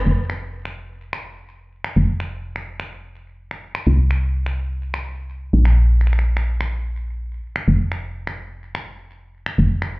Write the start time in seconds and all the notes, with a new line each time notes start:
0.06 F1
0.30 finger snap
0.65 finger snap
1.13 finger snap
1.84 finger snap
1.96 F1
2.20 finger snap
2.56 finger snap
2.80 finger snap
3.51 finger snap
3.75 finger snap
3.87 C2
4.11 finger snap
4.46 finger snap
4.94 finger snap
5.53 A#1
5.65 finger snap
6.01 finger snap
6.07 finger snap
6.13 finger snap
6.19 finger snap
6.37 finger snap
6.61 finger snap
7.56 finger snap
7.68 F1
7.92 finger snap
8.27 finger snap
8.75 finger snap
9.46 finger snap
9.58 F1
9.82 finger snap